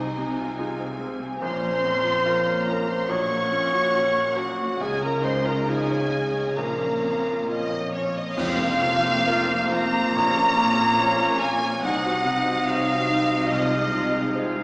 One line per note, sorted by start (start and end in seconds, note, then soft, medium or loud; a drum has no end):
0.00 1.38 C2 medium
0.00 1.39 C3 medium
0.00 1.45 C3 medium
0.00 1.45 G#3 soft
0.00 0.15 C4 soft
0.00 0.16 C4 medium
0.00 0.57 D#4 medium
0.00 1.45 D#4 soft
0.00 0.79 C5 soft
0.00 0.60 D#5 medium
0.00 1.45 D#5 soft
0.00 1.42 G#5 medium
0.00 1.45 C6 soft
0.16 0.85 C3 soft
0.16 1.45 C4 soft
0.16 0.38 D#4 medium
0.37 2.03 F4 soft
0.37 0.59 F4 medium
0.59 0.80 D#4 medium
0.59 0.97 F4 soft
0.59 1.45 G#4 soft
0.59 0.97 G#4 soft
0.80 1.01 C4 medium
0.80 1.45 C5 medium
1.00 1.21 G#3 medium
1.00 1.42 C4 soft
1.00 2.66 F5 medium
1.20 1.42 C4 medium
1.20 1.46 G#5 medium
1.40 3.06 A#1 medium
1.40 4.77 A#1 medium
1.40 4.77 A#2 medium
1.40 3.09 A#2 medium
1.40 1.60 F3 medium
1.40 1.81 C#4 medium
1.40 2.71 C5 loud
1.40 3.07 A#5 medium
1.40 2.65 C6 medium
1.62 3.14 F3 medium
1.62 1.83 A#3 medium
1.82 2.51 F2 medium
1.82 2.04 C#4 medium
1.82 3.51 C#4 medium
2.04 2.25 F4 medium
2.04 3.14 F4 medium
2.24 2.46 C#4 medium
2.24 2.64 F4 soft
2.24 2.64 A#4 medium
2.24 4.85 A#4 medium
2.45 2.67 A#3 medium
2.45 4.14 C#5 medium
2.66 2.88 F3 medium
2.66 3.10 C#4 soft
2.66 3.13 F5 medium
2.66 2.89 A#5 medium
2.70 2.93 A#4 medium
2.87 3.09 A#3 medium
2.87 4.85 A#5 medium
2.87 3.10 C6 medium
2.92 3.13 C5 medium
3.07 4.77 A#1 medium
3.07 4.85 A#2 medium
3.07 3.28 F#3 medium
3.07 4.38 C#6 medium
3.11 4.39 C#5 loud
3.11 4.82 F#5 medium
3.29 3.52 A#3 medium
3.29 3.72 A#3 soft
3.50 4.21 A#2 medium
3.50 3.73 C#4 medium
3.50 5.25 C#4 medium
3.71 4.85 A#3 soft
3.71 3.94 F#4 medium
3.93 4.16 C#4 medium
3.93 4.34 C#4 soft
3.93 4.36 F#4 medium
3.93 4.34 F#4 medium
4.13 4.37 A#3 medium
4.13 5.89 C#5 medium
4.35 4.58 F#3 medium
4.35 4.81 C#4 soft
4.35 4.84 F#4 medium
4.35 4.85 F#4 medium
4.35 4.82 F#5 medium
4.56 4.80 A#3 medium
4.56 4.84 F#5 medium
4.79 6.53 C#2 medium
4.79 6.58 C#2 medium
4.79 6.61 C#3 medium
4.79 6.57 C#3 medium
4.79 5.00 G#3 medium
4.79 5.04 G#4 loud
4.79 6.54 D#5 medium
4.79 5.03 G#5 medium
4.99 6.61 G#3 soft
4.99 5.23 C#4 medium
5.03 5.26 A#4 medium
5.03 5.25 A#5 medium
5.21 5.95 G#2 soft
5.21 5.45 D#4 medium
5.21 5.49 C5 medium
5.21 5.46 C6 medium
5.26 7.02 C#4 medium
5.44 6.61 D#4 soft
5.44 5.67 F4 medium
5.44 5.69 A#4 medium
5.44 5.69 A#5 medium
5.65 5.89 D#4 medium
5.65 6.09 D#4 soft
5.65 7.25 F4 medium
5.65 6.09 F4 medium
5.69 6.59 G#4 medium
5.69 6.58 G#5 medium
5.87 6.11 C#4 medium
5.87 7.70 C#5 medium
6.09 6.33 G#3 medium
6.09 6.58 C#4 soft
6.09 6.61 D#5 medium
6.32 6.53 C#4 soft
6.32 7.93 F5 medium
6.55 8.33 A#1 medium
6.55 8.14 A#1 medium
6.55 8.14 A#2 medium
6.55 8.41 A#2 medium
6.55 6.77 F3 medium
6.55 7.00 C#4 medium
6.55 7.94 A#4 medium
6.55 7.49 F5 medium
6.55 7.48 A#5 medium
6.78 10.70 F3 soft
6.78 7.02 A#3 medium
7.01 7.75 F2 soft
7.01 7.25 C#4 medium
7.01 7.48 C#4 soft
7.25 7.48 F4 medium
7.25 11.16 F4 soft
7.47 7.70 C#4 medium
7.47 8.42 C#4 soft
7.47 7.89 F4 soft
7.47 7.91 D#5 medium
7.52 7.92 D#5 medium
7.70 7.93 A#3 medium
7.70 8.16 C#5 soft
7.93 8.16 F3 medium
7.93 8.38 C#4 soft
7.93 8.15 C#5 medium
7.93 8.17 C#5 medium
7.93 11.84 F5 soft
8.16 8.38 A#3 medium
8.16 8.42 C#5 medium
8.16 8.38 D#5 medium
8.16 8.39 D#5 medium
8.37 10.11 F1 medium
8.37 10.10 F2 medium
8.37 10.18 F2 medium
8.37 10.11 F2 medium
8.37 9.68 F2 loud
8.37 11.78 F3 medium
8.37 11.78 A#3 medium
8.37 10.11 A#3 medium
8.37 8.58 C4 medium
8.37 8.58 F4 medium
8.37 10.18 C5 medium
8.37 9.72 F5 loud
8.37 concert bass drum medium
8.37 crash medium
8.59 8.81 A#3 medium
8.59 8.81 C4 medium
8.81 9.54 C3 medium
8.81 9.01 C4 medium
8.81 9.71 C4 medium
8.81 9.04 F4 medium
9.03 9.26 A#3 medium
9.03 9.25 C4 medium
9.27 9.47 C4 medium
9.27 9.48 F4 medium
9.27 9.68 F4 medium
9.27 11.85 A#4 medium
9.27 9.68 A#4 medium
9.49 9.71 A#3 medium
9.49 9.70 C4 medium
9.71 9.92 C4 medium
9.71 10.15 C4 medium
9.71 10.18 C4 medium
9.71 9.93 F4 medium
9.71 11.39 A#5 loud
9.71 11.40 A#5 loud
9.71 11.41 A#5 loud
9.93 10.14 A#3 medium
9.93 10.14 C4 medium
10.15 11.82 A#1 medium
10.15 11.78 A#1 medium
10.15 11.36 A#2 loud
10.15 11.85 A#2 medium
10.15 11.82 A#2 medium
10.15 10.34 A#3 medium
10.15 11.77 C#4 medium
10.15 10.34 F4 medium
10.15 11.82 C#5 medium
10.34 10.56 C#4 medium
10.34 10.56 A#4 medium
10.56 11.24 F2 medium
10.56 10.77 A#3 medium
10.56 11.40 C#4 medium
10.56 10.77 F4 medium
10.77 10.98 C#4 medium
10.77 10.98 A#4 medium
10.99 11.18 A#3 medium
10.99 11.18 F4 medium
10.99 11.36 F4 medium
10.99 11.85 C#5 medium
10.99 11.36 C#5 medium
11.20 11.40 C#4 medium
11.20 11.40 A#4 medium
11.41 11.61 A#3 medium
11.41 11.85 C#4 medium
11.41 11.82 C#4 medium
11.41 11.61 F4 medium
11.41 11.82 G#5 loud
11.41 11.81 G#5 medium
11.41 11.82 G#5 medium
11.61 11.82 C#4 medium
11.61 11.82 A#4 medium
11.81 13.48 C2 medium
11.81 14.63 C2 medium
11.81 13.51 C3 medium
11.81 14.63 C3 medium
11.81 13.47 F#3 medium
11.81 13.51 C4 medium
11.81 14.63 D#4 medium
11.81 12.02 D#4 medium
11.81 13.54 D#5 medium
11.81 12.67 F#5 medium
11.81 12.65 F#5 medium
11.81 12.66 F#5 medium
12.05 12.25 C4 medium
12.05 12.25 F#4 medium
12.25 12.92 C3 medium
12.25 13.09 D#4 medium
12.25 12.46 D#4 medium
12.47 12.67 C4 medium
12.47 12.67 F#4 medium
12.66 12.88 D#4 medium
12.66 13.05 F#4 medium
12.66 14.34 C5 medium
12.66 13.05 C5 medium
12.66 13.51 F5 loud
12.66 13.51 F5 medium
12.66 13.52 F5 medium
12.89 13.10 C4 medium
12.89 13.10 F#4 medium
13.09 13.51 D#4 medium
13.09 13.31 D#4 medium
13.32 13.52 C4 soft
13.32 13.52 F#4 medium
13.50 14.63 C2 medium
13.50 14.63 C3 medium
13.50 13.72 F3 medium
13.50 14.63 G#3 medium
13.50 13.71 F4 medium
13.50 14.34 D#5 medium
13.50 14.35 D#5 medium
13.50 14.63 F5 medium
13.73 13.93 G#3 medium
13.73 13.93 D#4 medium
13.93 14.60 C3 medium
13.93 14.14 F3 medium
13.93 14.63 F4 medium
13.93 14.14 F4 medium
14.14 14.35 G#3 medium
14.14 14.35 D#4 medium
14.35 14.54 F3 medium
14.35 14.54 F4 medium
14.35 14.63 G#4 soft
14.35 14.63 C5 medium
14.56 14.63 G#3 medium
14.56 14.63 D#4 medium